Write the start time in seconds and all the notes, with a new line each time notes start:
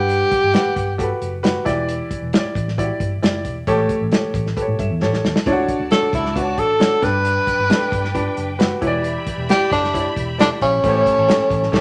Already playing: G1 G2 G4 B4 F#5
0.09 closed hi-hat
0.31 kick, closed hi-hat
0.43 G1
0.54 G4 B4 F#5, snare, closed hi-hat
0.66 muted fingered electric bass stroke
0.76 G1, kick, closed hi-hat
0.98 F#4 G4 A4, kick, closed hi-hat
1.03 B4
1.22 F#1, closed hi-hat
1.43 F#4 G4 B4, snare, closed hi-hat
1.65 E1 E3 E4 G4 D5, kick, snare, closed hi-hat
1.89 closed hi-hat
2.11 kick, closed hi-hat
2.22 E1
2.33 E4 G4 C#5, snare, closed hi-hat
2.39 D5
2.45 muted fingered electric bass stroke
2.55 A1, kick, closed hi-hat
2.68 snare
2.78 E4 F#4 D5, kick, closed hi-hat
2.83 G4
3.00 G1, kick, closed hi-hat
3.22 F#1 E4 G4 D5, snare, closed hi-hat
3.45 E1, kick, closed hi-hat
3.67 A1 A2 E3 C#4 G4 A4 C#5, kick, closed hi-hat
3.89 kick, closed hi-hat
4.01 A1
4.12 G4 A4 C#5, snare, closed hi-hat
4.23 muted fingered electric bass stroke
4.34 A1, kick, closed hi-hat
4.46 snare
4.56 G4 A4 B4, kick, closed hi-hat
4.62 C#5
4.68 A2
4.79 G2 E5, kick, closed hi-hat
4.90 E2
5.01 A1 G4 A4 C#5 A5, snare
5.13 snare
5.24 D#2, snare
5.36 snare
5.45 D2 D3 D4 E4 F#4 C#5 D5 A5, kick, closed hi-hat
5.52 F#4
5.68 kick, closed hi-hat
5.80 D2
5.91 D4 F#4 A4 C#5, snare, closed hi-hat
6.02 muted fingered electric bass stroke
6.13 C#2 E4, kick, closed hi-hat
6.25 snare
6.35 D4 F#4 B4, kick, closed hi-hat
6.41 C#5
6.58 A1 A4, kick, closed hi-hat
6.80 D4 F#4 C#5, snare, closed hi-hat
7.02 G1 G2 D4 G4 B4 G5, kick, snare, closed hi-hat
7.25 closed hi-hat
7.47 kick, closed hi-hat
7.59 G1
7.69 D4 G4 A4, snare, closed hi-hat
7.75 B4
7.81 muted fingered electric bass stroke
7.92 G1, kick, closed hi-hat
8.04 snare
8.14 D4 G4 B4, kick, closed hi-hat
8.37 F#1, closed hi-hat
8.59 F#4 G4 B4, snare, closed hi-hat
8.81 E1 E3 E4 G4 C#5 E5 B5, kick, closed hi-hat
8.87 D5
9.04 closed hi-hat
9.27 kick, closed hi-hat
9.38 E1
9.49 E4 G4 D5, snare, closed hi-hat
9.60 muted fingered electric bass stroke
9.71 F#1 D4, kick, closed hi-hat
9.84 snare
9.94 E4 G4 C#5, kick, closed hi-hat
9.99 D5
10.16 E1, kick, closed hi-hat
10.38 D4 E4 G4 D5, snare, closed hi-hat
10.61 A#1 C#4, kick, closed hi-hat
10.83 A1 A2 E3 C#4 E4 G4 A4 C5 C#5 A5, kick, closed hi-hat
10.89 C#5
11.06 kick, closed hi-hat
11.17 A1
11.28 G4 A4 C#5, snare, closed hi-hat
11.39 muted fingered electric bass stroke
11.50 A1, kick, closed hi-hat
11.63 snare
11.72 A1 E3 C#4 E4 G4 A4 C#5 A5, kick, snare, crash